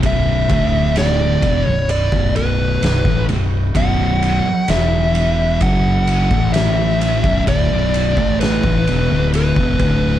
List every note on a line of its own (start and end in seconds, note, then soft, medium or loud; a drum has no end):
0.00 0.46 B0 medium
0.00 0.50 B1 medium
0.00 0.50 F#2 medium
0.00 0.50 B2 medium
0.00 kick loud
0.00 ride loud
0.06 1.01 E5 loud
0.49 1.39 D1 medium
0.49 1.42 D2 medium
0.49 1.42 A2 medium
0.49 1.43 D3 loud
0.49 kick loud
0.49 ride medium
0.96 1.61 D5 loud
0.96 snare loud
0.96 ride medium
1.42 1.64 E1 medium
1.42 1.66 E2 medium
1.42 1.66 B2 loud
1.42 kick loud
1.42 ride medium
1.61 1.89 C#5 loud
1.67 2.10 B0 medium
1.67 2.04 B1 medium
1.67 2.04 F#2 medium
1.89 2.36 D5 loud
1.89 ride medium
2.12 2.78 B0 loud
2.12 2.81 B1 medium
2.12 2.81 F#2 loud
2.12 2.82 B2 loud
2.12 kick loud
2.36 3.25 B4 medium
2.36 ride medium
2.82 3.04 B0 medium
2.82 3.05 B1 medium
2.82 3.06 F#2 medium
2.82 snare loud
2.82 ride medium
3.05 3.27 A1 medium
3.05 3.28 A2 medium
3.05 3.29 E3 loud
3.05 kick loud
3.29 3.72 B0 medium
3.29 3.66 B1 medium
3.29 3.66 F#2 medium
3.29 ride medium
3.75 4.41 B0 medium
3.75 4.44 B1 medium
3.75 4.44 F#2 loud
3.75 4.45 B2 loud
3.75 4.70 F#5 loud
3.75 kick loud
3.75 ride medium
4.22 ride medium
4.45 muted fretless electric bass stroke soft
4.45 muted distorted electric guitar stroke medium
4.68 5.57 E1 loud
4.68 5.60 E2 medium
4.68 5.60 B2 medium
4.68 5.61 E3 loud
4.68 5.59 E5 loud
4.68 snare loud
4.68 ride medium
5.15 ride medium
5.61 6.27 F#1 loud
5.61 6.29 F#2 medium
5.61 6.30 C#3 loud
5.61 6.30 F#3 loud
5.61 6.53 F#5 loud
5.61 kick loud
5.61 ride medium
6.07 ride medium
6.30 7.20 A1 loud
6.30 7.23 A2 medium
6.30 7.24 E3 medium
6.30 7.24 A3 loud
6.30 kick loud
6.53 7.43 E5 medium
6.53 snare loud
6.53 ride loud
7.01 ride medium
7.23 7.45 B0 medium
7.23 7.46 B1 medium
7.23 7.47 F#2 loud
7.23 kick loud
7.47 7.69 D1 loud
7.47 7.69 D2 medium
7.47 7.69 A2 loud
7.47 8.40 D5 loud
7.47 kick loud
7.47 ride loud
7.71 8.14 B0 loud
7.71 8.16 B1 medium
7.71 8.16 F#2 medium
7.71 8.17 B2 loud
7.94 ride medium
8.17 8.61 A1 medium
8.17 8.63 A2 medium
8.17 8.63 E3 medium
8.17 8.63 A3 medium
8.17 kick loud
8.40 9.30 B4 medium
8.40 snare loud
8.40 ride loud
8.63 8.85 A1 loud
8.63 8.86 A2 medium
8.63 8.87 E3 loud
8.63 kick loud
8.87 9.09 E1 loud
8.87 9.09 E2 medium
8.87 9.10 B2 loud
8.87 ride medium
9.11 9.54 D1 loud
9.11 9.56 D2 medium
9.11 9.57 A2 medium
9.11 9.57 D3 medium
9.34 10.19 B4 medium
9.34 ride medium
9.56 9.78 E1 medium
9.56 9.80 E2 medium
9.56 9.80 B2 medium
9.56 kick loud
9.79 10.19 D1 loud
9.79 10.19 D2 medium
9.79 10.19 A2 loud
9.79 10.19 D3 medium
9.79 kick loud
9.79 ride medium